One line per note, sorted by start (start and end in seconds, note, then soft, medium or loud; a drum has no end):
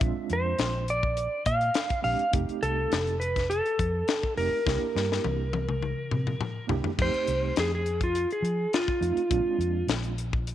0.00 0.13 A#1 medium
0.00 0.82 G#3 medium
0.00 0.82 C4 medium
0.00 0.83 D4 medium
0.00 0.83 F4 medium
0.00 kick loud
0.00 closed hi-hat medium
0.30 0.53 F2 medium
0.30 0.91 C5 medium
0.30 closed hi-hat medium
0.59 1.26 A#1 medium
0.59 snare medium
0.59 closed hi-hat medium
0.88 1.43 D5 medium
0.88 closed hi-hat medium
1.03 kick medium
1.17 closed hi-hat medium
1.46 1.69 A#2 medium
1.46 2.03 F5 loud
1.46 kick medium
1.46 closed hi-hat medium
1.61 closed hi-hat soft
1.74 snare loud
1.74 closed hi-hat medium
1.90 kick medium
1.90 closed hi-hat soft
2.02 2.16 A#1 medium
2.02 2.24 G#3 medium
2.02 2.24 C4 medium
2.02 2.25 D4 medium
2.02 2.25 G4 medium
2.02 2.31 F5 medium
2.02 open hi-hat medium
2.19 closed hi-hat soft
2.31 2.45 F1 medium
2.31 3.14 A3 medium
2.31 3.14 C4 medium
2.31 3.15 D#4 medium
2.31 3.15 G4 medium
2.31 kick loud
2.31 closed hi-hat medium
2.49 muted fingered electric bass stroke soft
2.49 closed hi-hat soft
2.62 2.85 C2 medium
2.62 3.22 A4 loud
2.62 closed hi-hat medium
2.92 3.60 F1 medium
2.92 snare loud
2.92 closed hi-hat medium
3.07 closed hi-hat soft
3.20 3.50 B4 medium
3.20 closed hi-hat medium
3.36 kick medium
3.36 snare soft
3.36 closed hi-hat soft
3.50 4.37 A4 loud
3.50 closed hi-hat medium
3.66 closed hi-hat soft
3.79 4.02 F2 medium
3.79 kick medium
3.79 closed hi-hat medium
4.08 snare loud
4.08 closed hi-hat medium
4.23 kick medium
4.36 4.49 F1 medium
4.36 4.57 A3 medium
4.36 4.57 C4 medium
4.36 4.58 D#4 medium
4.36 4.58 G4 medium
4.36 6.66 A#4 medium
4.36 open hi-hat medium
4.52 muted fingered electric bass stroke soft
4.66 4.78 C2 medium
4.66 5.48 A#3 medium
4.66 5.48 D4 medium
4.66 5.48 E4 medium
4.66 5.49 G4 medium
4.66 kick loud
4.66 snare medium
4.96 5.18 G2 medium
4.96 snare medium
5.12 snare medium
5.24 5.92 C2 medium
5.24 high tom medium
5.53 high tom medium
5.69 mid tom medium
5.83 mid tom medium
6.11 6.34 C3 medium
6.11 mid tom medium
6.27 mid tom medium
6.41 mid tom medium
6.67 6.81 C2 medium
6.67 6.89 A#3 medium
6.67 6.90 D4 medium
6.67 6.90 E4 medium
6.67 6.90 G4 medium
6.67 floor tom medium
6.84 floor tom medium
6.98 7.10 F2 loud
6.98 7.80 A3 medium
6.98 7.80 C4 medium
6.98 7.80 D#4 medium
6.98 7.81 G4 medium
6.98 kick loud
6.98 crash loud
7.02 7.57 C5 medium
7.14 muted fingered electric bass stroke soft
7.14 closed hi-hat soft
7.27 7.50 C2 medium
7.27 closed hi-hat medium
7.56 8.25 F2 medium
7.56 7.73 G#4 medium
7.56 snare loud
7.56 closed hi-hat medium
7.75 8.02 G#4 medium
7.86 closed hi-hat medium
8.01 8.30 F4 medium
8.01 kick medium
8.01 closed hi-hat soft
8.15 closed hi-hat medium
8.31 8.73 G#4 medium
8.31 closed hi-hat soft
8.42 8.65 F3 medium
8.42 closed hi-hat medium
8.73 9.86 F4 medium
8.73 snare loud
8.73 closed hi-hat medium
8.88 kick medium
9.00 9.13 F2 medium
9.00 9.22 A3 medium
9.00 9.22 C4 medium
9.00 9.22 D#4 medium
9.00 9.23 F4 medium
9.00 closed hi-hat medium
9.16 muted fingered electric bass stroke soft
9.16 closed hi-hat soft
9.30 9.42 A#1 medium
9.30 10.12 G#3 medium
9.30 10.12 C4 medium
9.30 10.13 D4 medium
9.30 10.13 F4 medium
9.30 kick loud
9.30 closed hi-hat medium
9.58 9.82 F2 medium
9.58 closed hi-hat medium
9.87 10.55 A#1 medium
9.87 snare loud
9.87 closed hi-hat medium
10.04 closed hi-hat soft
10.18 closed hi-hat medium
10.33 kick medium
10.47 closed hi-hat medium